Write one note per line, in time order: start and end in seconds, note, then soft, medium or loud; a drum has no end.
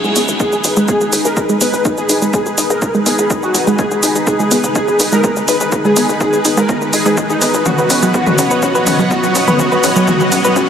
0.00 7.62 D#4 medium
0.00 0.22 G#4 loud
0.00 7.62 G#4 medium
0.00 10.69 B4 medium
0.00 riser medium
0.04 0.12 G#1 medium
0.04 0.12 G#3 loud
0.04 shaker soft
0.16 0.25 G#1 loud
0.16 0.28 B3 medium
0.16 open hi-hat loud
0.16 shaker medium
0.28 0.36 G#1 medium
0.28 shaker soft
0.40 0.45 D#4 medium
0.40 0.70 G#4 medium
0.40 kick loud
0.40 shaker soft
0.52 0.61 G#1 medium
0.52 0.61 G#4 medium
0.52 shaker soft
0.64 0.73 G#1 medium
0.64 0.69 D#4 medium
0.64 open hi-hat loud
0.64 shaker medium
0.77 0.85 G#2 medium
0.77 0.85 G#3 medium
0.77 shaker soft
0.88 1.00 B3 medium
0.88 1.11 G#4 medium
0.88 kick loud
0.88 shaker soft
1.01 1.09 G#1 medium
1.01 shaker soft
1.13 1.21 G#1 loud
1.13 1.18 D#4 medium
1.13 open hi-hat loud
1.13 shaker medium
1.25 1.33 A#1 medium
1.25 1.33 G#4 medium
1.25 1.47 A#4 medium
1.25 shaker soft
1.37 1.42 D#4 medium
1.37 kick loud
1.37 shaker soft
1.49 1.57 G#1 medium
1.49 1.57 G#3 loud
1.49 shaker soft
1.61 1.70 G#1 medium
1.61 1.73 B3 medium
1.61 1.83 B4 medium
1.61 open hi-hat loud
1.61 shaker medium
1.73 1.82 G#1 medium
1.73 shaker soft
1.85 1.90 D#4 medium
1.85 kick loud
1.85 shaker soft
1.98 2.06 G#1 medium
1.98 2.20 G#4 medium
1.98 2.06 G#4 medium
1.98 shaker soft
2.09 2.18 G#1 loud
2.09 2.15 D#4 medium
2.09 open hi-hat loud
2.09 shaker medium
2.22 2.30 G#1 medium
2.22 2.30 G#3 loud
2.22 shaker soft
2.34 2.45 B3 medium
2.34 2.56 G#4 medium
2.34 kick loud
2.34 shaker soft
2.46 2.54 G#1 medium
2.46 shaker soft
2.58 2.66 G#1 loud
2.58 2.63 D#4 medium
2.58 open hi-hat loud
2.58 shaker medium
2.70 2.78 G#2 medium
2.70 2.78 G#4 medium
2.70 2.92 A#4 medium
2.70 shaker soft
2.82 2.87 D#4 medium
2.82 kick loud
2.82 shaker soft
2.94 3.03 G#1 medium
2.94 3.02 G#3 loud
2.94 shaker soft
3.06 3.15 G#1 medium
3.06 3.18 B3 medium
3.06 3.29 G#4 medium
3.06 open hi-hat loud
3.06 shaker medium
3.19 3.27 A#1 medium
3.19 shaker soft
3.30 3.35 D#4 medium
3.30 kick loud
3.30 shaker soft
3.43 3.51 G#1 medium
3.43 3.65 F#4 medium
3.43 3.51 G#4 medium
3.43 shaker soft
3.54 3.63 G#1 loud
3.54 3.60 D#4 medium
3.54 open hi-hat loud
3.54 shaker medium
3.67 3.75 G#1 medium
3.67 3.75 G#3 medium
3.67 shaker soft
3.79 3.91 B3 medium
3.79 4.09 G#4 loud
3.79 kick loud
3.79 shaker soft
3.91 3.99 G#1 medium
3.91 shaker soft
4.03 4.12 G#1 loud
4.03 4.08 D#4 medium
4.03 open hi-hat loud
4.03 shaker medium
4.15 4.24 G#1 medium
4.15 4.23 G#4 medium
4.15 shaker soft
4.27 4.32 D#4 medium
4.27 4.57 G#4 loud
4.27 kick loud
4.27 shaker soft
4.39 4.48 G#1 medium
4.39 4.48 G#3 loud
4.39 shaker soft
4.51 4.60 G#1 loud
4.51 4.63 B3 medium
4.51 open hi-hat loud
4.51 shaker medium
4.64 4.72 G#2 medium
4.64 shaker soft
4.75 4.81 D#4 medium
4.75 4.98 G#4 loud
4.75 kick loud
4.75 shaker soft
4.88 4.96 G#1 medium
4.88 4.96 G#4 medium
4.88 shaker soft
5.00 5.08 G#1 loud
5.00 5.05 D#4 medium
5.00 open hi-hat loud
5.00 shaker medium
5.12 5.20 A#1 medium
5.12 5.20 G#3 loud
5.12 5.34 A#4 loud
5.12 shaker soft
5.24 5.36 B3 medium
5.24 kick loud
5.24 shaker soft
5.36 5.45 G#1 medium
5.36 shaker soft
5.48 5.57 G#1 loud
5.48 5.53 D#4 medium
5.48 5.70 B4 medium
5.48 open hi-hat loud
5.48 shaker medium
5.60 5.69 G#1 medium
5.60 5.69 G#4 medium
5.60 shaker soft
5.72 5.77 D#4 medium
5.72 kick loud
5.72 shaker soft
5.85 5.93 G#1 medium
5.85 5.93 G#3 loud
5.85 6.07 G#4 loud
5.85 shaker soft
5.96 6.05 G#1 loud
5.96 6.08 B3 medium
5.96 open hi-hat loud
5.96 shaker medium
6.09 6.17 G#1 medium
6.09 shaker soft
6.21 6.26 D#4 medium
6.21 6.43 G#4 loud
6.21 kick loud
6.21 shaker soft
6.33 6.41 G#1 medium
6.33 6.41 G#4 medium
6.33 shaker soft
6.45 6.54 G#1 medium
6.45 6.50 D#4 medium
6.45 open hi-hat loud
6.45 shaker medium
6.57 6.66 G#2 medium
6.57 6.65 G#3 loud
6.57 6.80 A#4 medium
6.57 shaker soft
6.69 6.81 B3 medium
6.69 kick loud
6.69 shaker soft
6.82 6.90 G#1 medium
6.82 shaker soft
6.93 7.02 G#1 loud
6.93 7.05 D#4 medium
6.93 7.16 G#4 medium
6.93 open hi-hat loud
6.93 shaker medium
7.06 7.14 G#2 medium
7.06 7.14 G#3 medium
7.06 shaker soft
7.17 kick loud
7.17 shaker soft
7.30 7.38 G#1 medium
7.30 7.52 D#4 loud
7.30 7.35 G#4 loud
7.30 shaker soft
7.42 7.50 G#1 loud
7.42 7.53 B3 medium
7.42 open hi-hat loud
7.42 shaker medium
7.54 7.62 G#1 medium
7.54 shaker soft
7.66 10.69 B3 medium
7.66 7.71 C#4 medium
7.66 7.96 F#4 medium
7.66 10.69 C#5 medium
7.66 10.69 D#5 medium
7.66 10.69 F#5 medium
7.66 kick loud
7.66 mid tom medium
7.66 shaker soft
7.78 7.86 B1 medium
7.78 7.89 B4 medium
7.78 shaker soft
7.90 7.99 B1 loud
7.90 7.95 C#4 medium
7.90 open hi-hat loud
7.90 shaker medium
8.02 8.11 B1 medium
8.02 8.11 F#3 medium
8.02 shaker soft
8.14 8.26 B3 medium
8.14 8.44 F#4 medium
8.14 kick loud
8.14 shaker soft
8.27 8.35 B1 medium
8.27 mid tom medium
8.27 shaker soft
8.38 8.47 B1 loud
8.38 8.44 C#4 medium
8.38 open hi-hat loud
8.38 shaker medium
8.51 8.59 F#1 medium
8.51 8.61 B4 medium
8.51 shaker soft
8.63 8.68 C#4 medium
8.63 8.93 F#4 loud
8.63 kick loud
8.63 shaker soft
8.75 8.83 B1 medium
8.75 8.86 B4 loud
8.75 shaker soft
8.87 8.95 B1 loud
8.87 8.92 C#4 medium
8.87 open hi-hat loud
8.87 mid tom medium
8.87 shaker medium
8.99 9.07 C#2 medium
8.99 9.07 F#3 loud
8.99 shaker soft
9.11 9.23 B3 medium
9.11 9.41 F#4 medium
9.11 kick loud
9.11 shaker soft
9.23 9.32 B1 medium
9.23 shaker soft
9.35 9.44 B1 loud
9.35 9.40 C#4 medium
9.35 open hi-hat loud
9.35 shaker medium
9.48 9.56 B1 medium
9.48 9.58 B4 medium
9.48 mid tom loud
9.48 shaker soft
9.59 9.65 C#4 medium
9.59 9.89 F#4 loud
9.59 kick loud
9.59 shaker soft
9.72 9.80 B1 medium
9.72 9.83 B4 loud
9.72 shaker soft
9.84 9.92 B1 loud
9.84 9.89 C#4 medium
9.84 open hi-hat loud
9.84 shaker medium
9.96 10.04 B1 medium
9.96 10.04 F#3 loud
9.96 shaker soft
10.08 10.20 B3 medium
10.08 10.38 F#4 medium
10.08 kick loud
10.08 mid tom medium
10.08 shaker soft
10.20 10.28 B1 medium
10.20 shaker soft
10.32 10.41 B1 loud
10.32 10.37 C#4 medium
10.32 open hi-hat loud
10.32 shaker medium
10.44 10.53 F#1 medium
10.44 10.54 B4 loud
10.44 shaker soft
10.56 10.61 C#4 medium
10.56 10.69 F#4 loud
10.56 kick loud
10.56 shaker soft